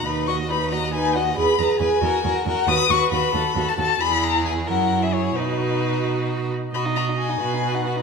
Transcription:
0.06 D#2 D#4 B4 B5
0.27 F#4 D#5 C#6
0.49 D#4 B4 B5
0.71 F#4 D#5 A#5
0.94 D#4 B4 G#5
1.15 F#4 D#5 F#5
1.37 E2 G#4 B4 B5
1.58 E2 G#4 B4 A#5
1.80 E2 G#4 B4 G#5
2.02 E2 F#4 A#4
2.24 E2 F#4 A#4
2.35 F#5
2.45 E2 F#4 A#4 F#5
2.67 D#2 F#4 B4 D#6
2.90 D#2 F#4 B4 C#6
3.11 D#2 F#4 B4 B5
3.34 D#2 F#4 A4
3.55 D#2 F#4 A4
3.68 A5
3.78 D#2 F#4 A4 A5
4.00 E2 E4 G#4 B5
4.23 A#5
4.46 G#5
4.67 F#2 E4 A#4 F#5
5.02 G#4 E5
5.13 C#5
5.36 B2 D#4 F#4 B4
6.74 B2 F#4 D#5 B5
6.86 D#4
6.96 F#4 A#5
7.09 D#4
7.18 F#4 G#5
7.29 D#4
7.40 B2 F#4 B4
7.54 D#4
7.64 F#4
7.75 D#4 F#5
7.85 F#4 F#5
7.96 D#4

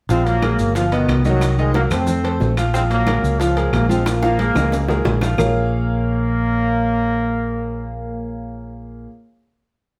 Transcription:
0.09 A#1 F3 G#3 C4 F4 F5, high bongo, high conga, maracas
0.26 F#3 A#3, high conga, high timbale, maracas
0.42 G#3 G#4 A#4, high bongo, high conga, high timbale, claves, maracas
0.58 G1, high bongo, high conga, maracas
0.75 B2 F3 F4 F5, high bongo, high conga, high timbale, maracas
0.92 B2 D#3 B3 B4 D#5, high bongo, high conga, high timbale, maracas
1.08 C2, high bongo, low bongo, high conga, high timbale, low timbale, claves, maracas
1.25 D#3 F#3 D#4 D#5, high bongo, high conga, maracas
1.41 high bongo, high conga, high timbale, claves, maracas
1.58 D#3 F3 G#3 D#4 D#5, high conga, maracas
1.74 F#3 A#3 F#4 A#4, high bongo, high conga, high timbale, maracas
1.91 F2 A3 C4 A4 C5, high bongo, high conga, low conga, high timbale, claves, maracas
2.07 high bongo, high conga, low conga, maracas
2.24 A3 A4 C5, high bongo, high conga, high timbale, maracas
2.40 A#1, high bongo, low bongo, high conga, low timbale, maracas
2.57 F3 F4 F5, high bongo, high conga, high timbale, claves, maracas
2.73 F3 G#3 C4 F4 F5, high bongo, high conga, maracas
2.90 F#3 A#3, high conga, high timbale, maracas
3.07 G#3 G#4 A#4, high bongo, high conga, high timbale, claves, maracas
3.23 C#2, high bongo, high conga, maracas
3.39 C#3 F3 F4 F5, high bongo, high conga, high timbale, maracas
3.56 G#3 G#4 A#4, high bongo, high conga, high timbale, maracas
3.73 A#1 F3 A#3, high bongo, low bongo, high conga, high timbale, low timbale, claves, maracas
3.89 F3 G#3 C4 F4 F5, high bongo, high conga, maracas
4.06 F3 A#3, high bongo, high conga, high timbale, claves, maracas
4.23 F3 F4 F5, high bongo, high conga, maracas
4.39 G#3 G#4 A#4, high conga, high timbale, maracas
4.55 C#2 G#3 G#4 A#4, high bongo, high conga, low conga, high timbale, claves, maracas
4.72 low bongo, high conga, high timbale, maracas
4.88 G#3 G#4 A#4, low bongo, high conga, low timbale, maracas
5.05 A#1, low bongo, high conga, low timbale, maracas
5.21 F3 F4 F5, low bongo, high conga, low timbale, claves, maracas
5.38 A#1 A#3 F4 G#4 A#4 C#5 F5, low bongo, low conga, low timbale, claves, maracas

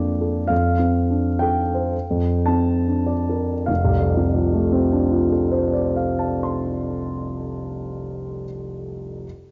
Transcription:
Already playing: F2 A#3 D4 D5 G5
0.21 A4
0.47 F2 F5
0.79 C4
1.10 D4
1.39 A4 G5
1.74 C5
2.10 F2
2.46 C4 A5
2.87 D4
3.06 D5
3.29 A#4
3.66 F1 F5
3.85 C2
4.00 F2
4.17 C3
4.35 F3
4.53 A3
4.72 C4
4.91 D4
5.11 F4
5.31 A4
5.51 C5
5.74 D5
5.96 F5
6.19 A5
6.43 C6

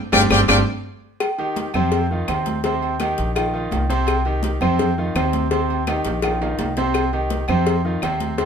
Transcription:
0.12 G1 G3 C4 D4 D5 F5 G5, cowbell, high conga, high timbale, claves
0.30 G1 G3 C4 D4 D5 F5 G5, cowbell, high conga, high timbale, claves
0.48 G1 G3 C4 D4 D5 F5 G5, cowbell, high conga, high timbale, claves
1.20 cowbell, high conga, low agogo, claves
1.38 D#3 D#4 G4, high conga, low agogo
1.56 cowbell, high conga, low timbale
1.74 F2 C3 C4 C5, low conga, low agogo, claves
1.92 cowbell, high conga, low agogo
2.11 D#3 D#4 F4, high conga
2.28 D#2 C3 C4 C5, cowbell, high conga, low timbale, low agogo, claves
2.46 cowbell, high conga
2.64 C3 C4 C5, cowbell, high conga, low agogo
2.82 high conga, low agogo
3.00 D#3 D#4 G4, cowbell, high conga, low timbale, low agogo, claves
3.18 A#1, cowbell, high conga
3.36 D#3 D#4 F4, cowbell, high conga, low agogo, claves
3.54 D#3 D#4 F4, high conga
3.71 C2, cowbell, high conga, low timbale, low agogo
3.90 C3 C4 C5, cowbell, high conga, low agogo
4.07 cowbell, high conga, low agogo, claves
4.25 D#3 D#4 G4, high conga, low agogo
4.43 cowbell, high conga, low timbale
4.61 F2 C3 C4 C5, low conga, low agogo, claves
4.79 cowbell, high conga, low conga, low agogo
4.98 D#3 D#4 F4, high conga
5.15 D#2 C3 C4 C5, cowbell, low timbale, low agogo, claves
5.33 cowbell, high conga
5.51 C3 C4 C5, cowbell, low agogo
5.70 high conga, low agogo
5.87 D#3 D#4 G4, cowbell, high conga, high timbale, low agogo, claves
6.05 A#1, cowbell, high conga, low timbale
6.22 D#3 D#4 F4, cowbell, high conga, low timbale, low agogo, claves
6.41 D#3 D#4 F4, high conga, low timbale
6.59 C2, cowbell, high conga, low timbale, low agogo
6.77 C3 C4 C5, cowbell, low timbale, low agogo
6.94 cowbell, high conga, low agogo, claves
7.13 D#3 D#4 G4, high conga, low agogo
7.30 cowbell, high conga, low timbale
7.48 F2 C3 C4 C5, low conga, low agogo, claves
7.66 cowbell, high conga, low agogo
7.85 D#3 D#4 F4, high conga
8.02 D#2 C3 C4 C5, cowbell, high conga, low timbale, low agogo, claves
8.20 cowbell, high conga
8.38 C3 C4 C5, cowbell, high conga, low agogo

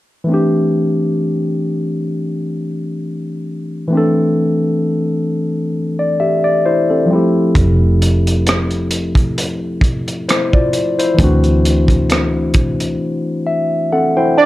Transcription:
0.24 E3 A3
0.29 C4 D4
0.34 G4
3.88 E3 A3
3.93 C4 D4
3.97 A4
5.99 D5
6.20 G4 E5
6.44 D5
6.66 E4 C5
6.90 C4 A4
7.06 F3 G3
7.11 C4 E4
7.15 A3 G4
7.55 F1, kick, closed hi-hat
8.02 closed hi-hat
8.27 closed hi-hat
8.47 cross-stick, closed hi-hat
8.71 closed hi-hat
8.91 closed hi-hat
9.15 kick, closed hi-hat
9.38 closed hi-hat
9.81 kick, closed hi-hat
10.08 closed hi-hat
10.29 E4 C5, cross-stick, closed hi-hat
10.53 F4 D5, kick
10.73 closed hi-hat
10.99 E4 C5, closed hi-hat
11.14 E3 A3
11.19 D2 C4 D4, kick, closed hi-hat
11.24 F#4
11.44 closed hi-hat
11.65 closed hi-hat
11.88 kick, closed hi-hat
12.10 cross-stick, closed hi-hat
12.54 kick, closed hi-hat
12.80 closed hi-hat
13.47 E5
13.92 C4 A4 F#5
14.17 E4 C5 G5
14.38 D5 A5

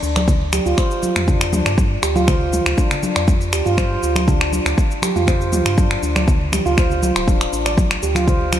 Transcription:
0.02 D2 D4, muted conga, shaker
0.16 D5, finger snap, high conga, shaker
0.28 kick, low conga, shaker
0.41 muted conga
0.53 G4, finger snap, high conga, shaker
0.66 D2 F4, shaker
0.78 C5, finger snap, kick, shaker
0.91 shaker
1.03 F4, high conga, shaker
1.16 F2, finger snap, mid tom, shaker
1.28 D4, kick, muted conga, low conga, shaker
1.41 finger snap, shaker
1.53 D2 D4, mid tom, high conga, shaker
1.66 G2 D5, finger snap, muted conga, shaker
1.78 kick, high conga, shaker
2.02 D2 G4, finger snap, muted conga, shaker
2.16 F4, high conga, shaker
2.28 C5, finger snap, kick, mid tom, low conga, shaker
2.41 muted conga
2.53 F4, mid tom, high conga, shaker
2.66 D2, finger snap, shaker
2.77 D4, kick, muted conga, high conga, shaker
2.91 finger snap, low conga, shaker
3.03 D4, high conga, shaker
3.16 F2 D5, finger snap, shaker
3.28 kick, muted conga, high conga, shaker
3.41 shaker
3.53 D2 G4, finger snap, shaker
3.66 G2 F4, muted conga, shaker
3.78 C5, finger snap, kick, high conga, shaker
4.03 D2 F4, muted conga, shaker
4.15 finger snap, high conga, shaker
4.28 D4, kick, low conga, shaker
4.41 finger snap, muted conga
4.53 D4, high conga, shaker
4.66 D2 D5, finger snap, shaker
4.78 kick, muted conga, shaker
4.91 shaker
5.02 G4, finger snap, high conga, shaker
5.16 F2 F4, mid tom, shaker
5.27 C5, finger snap, kick, muted conga, low conga, shaker
5.41 shaker
5.52 D2 F4, mid tom, high conga, shaker
5.66 G2, finger snap, muted conga, shaker
5.78 D4, kick, high conga, shaker
5.91 finger snap
6.02 D2 D4, muted conga, shaker
6.16 D5, finger snap, high conga, shaker
6.28 kick, mid tom, low conga, shaker
6.41 muted conga
6.52 G4, finger snap, mid tom, high conga, shaker
6.66 D2 F4, shaker
6.78 C5, finger snap, kick, muted conga, high conga, shaker
6.90 low conga, shaker
7.03 C2 F4, high conga, shaker
7.16 D1, finger snap, shaker
7.28 D4, kick, muted conga, high conga, shaker
7.41 finger snap, shaker
7.53 A1 D4, shaker
7.66 D5, finger snap, muted conga, shaker
7.77 kick, high conga, shaker
7.91 finger snap, closed hi-hat
8.03 D2 G4, muted conga, shaker
8.15 F4, finger snap, closed hi-hat, high conga, shaker
8.28 C5, kick, low conga, shaker
8.41 muted conga
8.52 F4, finger snap, high conga, shaker

